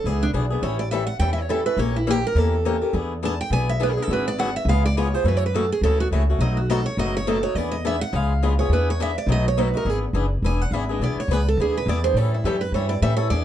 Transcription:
0.04 C#2 E3 B3 D4 G#4
0.23 D4
0.33 B1 E3 B3 D4 G#4
0.50 B3 D4 G#4
0.62 A1 E3 G3 C#4 E4 A4 C#5
0.79 D5
0.91 E3 G3 C#4 E4 A4 E5
1.07 F#5
1.19 E2 E3 G3 C#4 E4 A4 G5
1.33 E5
1.41 C#5
1.49 E3 G3 C#4 E4 A4
1.66 C#4 E4 A4 B4
1.77 A#1 E3 A#3 C#4 G4 A#4 C#5
1.96 E4
2.07 E3 A#3 C#4 G4 A#4
2.27 A#4
2.35 E2 E3 A#3 C#4 G4 A4 A#4
2.65 E3 A#3 C#4 G4 A#4
2.82 C#4 G4 A#4
2.93 E2 E3 B3 D4 G#4
3.23 E3 B3 D4 G#4 A5
3.41 G5
3.50 B1 E3 B3 D4 G#4 G#5
3.69 E5
3.80 E3 B3 D4 G#4 B4
3.93 G#4
3.97 B3 D4 G#4
4.02 A4
4.08 G#1 D3 F#3 B3 F#4 G#4
4.13 B4
4.28 D5
4.38 D3 F#3 B3 F#4 G#4 F#5
4.56 E5
4.65 C#2 C#3 G#3 B3 F4 G#4
4.69 F5
4.86 D5
4.97 C#3 G#3 B3 F4 G#4 C#5
5.14 B3 F4 G#4 C5
5.24 F#2 C#3 E3 A3 C#4 F#4
5.28 B4
5.37 C#5
5.46 B4
5.54 C#3 E3 A3 C#4 F#4 A4
5.72 G#4
5.81 D2 C#3 E3 A3 C#4 F#4 A4
6.00 F#4
6.11 C#2 C#3 E3 A3 C#4 F#4
6.30 A3 C#4 F#4
6.39 B1 B2 F#3 A3 D#4 F#4 D#5
6.57 F#4
6.70 B2 F#3 A3 D#4 F#4 A4
6.86 C#5
6.97 F#1 B2 F#3 A3 D#4 F#4 D#5
7.17 C#5
7.27 B2 F#3 A3 D#4 F#4 A4
7.43 A3 D#4 F#4 C#5
7.55 E2 E3 B3 D4 G#4 D5
7.72 D#5
7.85 E3 B3 D4 G#4 E5
8.01 F#5
8.13 C#2 C#3 G#3 B3 F4 G#4 F5
8.43 C#3 G#3 B3 F4 G#4
8.59 B3 F4 G#4 C#5
8.69 E2 E3 B3 D4 B4
8.73 G#4
8.90 C#5
9.00 E3 B3 D4 G#4 E5
9.18 D5
9.26 B1 B2 F#3 A3 D#4 F#4
9.32 D#5
9.48 C#5
9.57 B2 F#3 A3 D#4 F#4 B4
9.74 A3 D#4 F#4 A#4
9.85 G#1 E3 B3 D4 G#4
9.90 G#4
10.13 F#1 E3 B3 D4 G#4
10.42 E1 E3 B3 D4 G#4 G#5
10.61 F#5
10.71 G#1 E3 B3 D4 G#4 E5
10.89 B3 D4 G#4 D#5
11.00 B1 E3 B3 D4 G#4 D5
11.16 C#5, muted upright bass stroke
11.28 C#2 E3 B3 D4 G#4
11.33 B4
11.48 A4
11.57 D2 E3 B3 D4
11.61 G#4
11.77 B4
11.86 E2 E3 B3 D4 G#4 D5
12.04 B3 D4 G#4 C5
12.14 A2 E3 G3 C#4 E4 A4 C#5
12.34 E4
12.44 F#2 E3 G3 C#4 E4 G4 A4
12.61 B4
12.72 G2 E3 G3 C#4 E4 A4 C#5
12.89 D5
13.02 A2 E3 G3 C#4 E4 A4 E5
13.17 C#4 E4 A4 C#5
13.30 E2 E3 B3 D4 G#4 D5

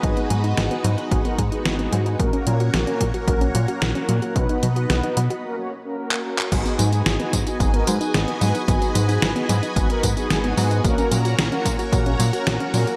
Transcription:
Already playing: G#3 D#4 F#4 B4
0.03 G#1 F#3 B3 D#4 F#4 G#4, kick, closed hi-hat
0.17 B3 D#4 F#4 G#4, closed hi-hat
0.30 G#2 F#3, closed hi-hat
0.44 B3 D#4 F#4 G#4, closed hi-hat
0.57 G#1 F#3, snare, closed hi-hat
0.71 B3 D#4 F#4 G#4, closed hi-hat
0.84 G#2 F#3, closed hi-hat
0.98 B3 D#4 F#4 G#4, closed hi-hat
1.11 G#1 F#3 B3 D#4 F#4 G#4, kick, closed hi-hat
1.25 B3 D#4 F#4 A#4, closed hi-hat
1.38 G#2 F#3, kick, closed hi-hat
1.52 B3 D#4 F#4 G#4, closed hi-hat
1.65 G#1 F#3, snare, closed hi-hat
1.79 B3 D#4 F#4 G#4, closed hi-hat
1.92 G#2 F#3, closed hi-hat
2.06 B3 D#4 F#4 G#4, closed hi-hat
2.19 A#1 F#3 A#3 C#4 F#4 A#4 C#5 F#5, kick, closed hi-hat
2.33 A#3 C#4 F#4 A#4, closed hi-hat
2.47 A#2 F#3, closed hi-hat
2.60 A#3 C#4 F#4 A#4, closed hi-hat
2.74 A#1 F#3, snare, closed hi-hat
2.87 A#3 C#4 F#4 A#4, closed hi-hat
3.01 A#2 F#3, kick, closed hi-hat
3.14 A#3 C#4 F#4 A#4, closed hi-hat
3.28 A#1 F#3 A#3 C#4 F#4 A#4, kick, closed hi-hat
3.41 A#3 C#4 F#4 C#5, closed hi-hat
3.55 A#2 F#3, closed hi-hat
3.68 A#3 C#4 F#4 A#4, closed hi-hat
3.82 A#1 F#3, snare, closed hi-hat
3.95 A#3 C#4 F#4 A#4, closed hi-hat
4.09 A#2 F#3, closed hi-hat
4.22 A#3 C#4 F#4 A#4, closed hi-hat
4.36 B1 F#3 B3 D#4 F#4 B4 D#5, kick, closed hi-hat
4.49 B3 D#4 F#4 B4, closed hi-hat
4.63 B2 F#3, closed hi-hat
4.76 B3 D#4 F#4 B4, closed hi-hat
4.90 B1 F#3, snare, closed hi-hat
5.03 B3 D#4 F#4 B4, closed hi-hat
5.17 B2 F#3, closed hi-hat
5.30 B3 D#4 F#4 B4, closed hi-hat
5.44 A#3 C#4 F#4 A#4
5.57 A#3 C#4 F#4 C#5
5.84 A#3 C#4 F#4 A#4
5.98 A#3 C#4 F#4 A#4
6.11 A#3 C#4 F#4 A#4, clap
6.25 A#3 C#4 F#4 A#4
6.39 clap
6.52 G#1 F#3 B3 D#4 F#4 G#4 B4 D#5 G#5, kick, closed hi-hat, tambourine, crash
6.65 B3 D#4 F#4 G#4, closed hi-hat, tambourine
6.79 G#2 F#3, closed hi-hat, tambourine
6.92 B3 D#4 F#4 G#4, closed hi-hat, tambourine
7.06 G#1 F#3, snare, closed hi-hat, tambourine
7.19 B3 D#4 F#4 G#4, closed hi-hat
7.33 G#2 F#3, kick, closed hi-hat, tambourine
7.47 B3 D#4 F#4 G#4, closed hi-hat, tambourine
7.60 G#1 F#3 B3 D#4 F#4 G#4, kick, closed hi-hat, tambourine
7.74 B3 D#4 F#4 A#4, closed hi-hat
7.87 G#2 F#3, closed hi-hat, tambourine
8.01 B3 D#4 F#4 G#4, closed hi-hat, tambourine
8.14 G#1 F#3 B3 D#4 F#4 G#4, snare, closed hi-hat, tambourine
8.28 B3 D#4 F#4 G#4, closed hi-hat
8.41 G#2 F#3 B3 D#4 F#4 G#4, open hi-hat, tambourine
8.55 D#4, closed hi-hat, tambourine
8.68 G#1 F#3 B3 D#4 F#4 G#4, kick, closed hi-hat, tambourine
8.82 B3 D#4 F#4 G#4, closed hi-hat, tambourine
8.95 G#2 F#3, closed hi-hat, tambourine
9.09 B3 D#4 F#4 G#4, closed hi-hat, tambourine
9.22 G#1 F#3, snare, closed hi-hat, tambourine
9.36 B3 D#4 F#4 G#4, closed hi-hat
9.49 G#2 F#3, closed hi-hat, tambourine
9.63 B3 D#4 F#4 G#4, closed hi-hat, tambourine
9.76 G#1 F#3 B3 D#4 F#4 G#4, kick, closed hi-hat, tambourine
9.90 B3 D#4 F#4 A#4, closed hi-hat
10.03 G#2 F#3, kick, closed hi-hat, tambourine
10.17 B3 D#4 F#4 G#4, closed hi-hat, tambourine
10.30 G#1 F#3 B3 D#4 F#4 G#4, snare, closed hi-hat, tambourine
10.44 B3 D#4 F#4 G#4, closed hi-hat
10.57 G#2 F#3 B3 D#4 F#4 G#4, open hi-hat, tambourine
10.71 D#4, closed hi-hat, tambourine
10.84 A#1 F#3 A#3 C#4 F#4 A#4 C#5 A#5, kick, closed hi-hat, tambourine
10.98 A#3 C#4 F#4 A#4, closed hi-hat, tambourine
11.11 A#2 F#3, closed hi-hat, tambourine
11.25 A#3 C#4 F#4 A#4, closed hi-hat, tambourine
11.38 A#1 F#3, snare, closed hi-hat, tambourine
11.52 A#3 C#4 F#4 A#4, closed hi-hat
11.65 A#2 F#3, kick, closed hi-hat, tambourine
11.79 A#3 C#4 F#4 A#4, closed hi-hat, tambourine
11.92 A#1 F#3 A#3 C#4 F#4 A#4, kick, closed hi-hat, tambourine
12.06 A#3 C#4 F#4 C#5, closed hi-hat
12.19 A#2 F#3, closed hi-hat, tambourine
12.33 A#3 C#4 F#4 A#4, closed hi-hat, tambourine
12.47 A#1 F#3 A#3 C#4 F#4 A#4, snare, closed hi-hat, tambourine
12.60 A#3 C#4 F#4 A#4, closed hi-hat
12.74 A#2 F#3 A#3 C#4 F#4 A#4, open hi-hat, tambourine
12.87 F#4, closed hi-hat, tambourine

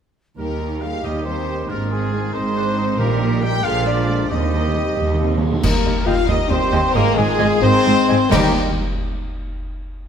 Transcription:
0.38 D#2 D#3 G3 A#3 D#4 G4 A#4
0.61 D#3 A#3 D#4 G4
0.81 G3 D#4 F4 G4 G#4 F5
1.03 D#2 D#3 A#3 D#4 G4 D#5
1.24 G3 C4 D#4 G4 C5
1.47 D#3 A#3 D#4 G4
1.69 G#1 G#2 G#3 A#3 C4 D4 D#4 F4 A#4
1.91 D#3 G#3 C4 D#4 G#4
2.12 G#3 C4 D#4
2.33 G#1 G#2 D#3 C4 D#4 C5
2.56 G#3 C4 D4 D#4
2.78 D#3 C4 D#4
2.99 A#1 A#2 D#3 G3 A#3 D#4 G4 A#4
3.21 D#3 A#3 G4
3.42 G3 D#4 G4 A#4 G5
3.63 A#1 A#2 D3 F3 G#3 A#3 D4 F4 G#4 F5
3.85 F3 A#3 D4 F4 D5
4.08 D3 G#3 A#3 D4
4.29 D#2 C3 D#3 G3 C4 D#4 G4 D#5
4.39 D#3
4.46 D#3
4.52 D#3 A#3 D#4
4.61 D#3
4.68 D#3
4.76 D#3 G3 C4
4.91 D#3
4.97 D#2 D#3 A#3 D#4
5.07 D#3
5.14 D#3
5.19 D#3 G3 C4
5.30 D#3
5.37 D#3 G#3
5.42 D#3 A#3 D#4
5.52 D#3
5.63 D#2 D#3 G3 A#3 G4 A#4 D#5 A#5, concert bass drum, crash
5.85 D#2 G4 D#5
6.06 D#2 F4 G4 D#5 F5 G5 F6
6.28 D#2 D#3 G3 D#4 G4 D#5 D#6
6.49 D#2 C4 G4 C5 D#5 C6
6.72 D#2 G4 D#5 G5
6.94 G#1 G#2 D#3 G#3 A#3 F4 G#4 A#4 D#5 A#5
7.16 G#1 G#2 G#3 G#4 D#5 G#5
7.39 G#1 G#2 G#4 D#5 G#5
7.62 G#1 G#2 D#3 G#3 C4 D#4 G#4 C5 D#5 C6
7.85 G#1 G#2 G#4 D#5
8.08 G#1 G#2 G#4 D#5 G#5
8.31 D#2 D#3 G3 A#3 D#4 G4 A#4 D#5 G5 A#5, concert bass drum, crash

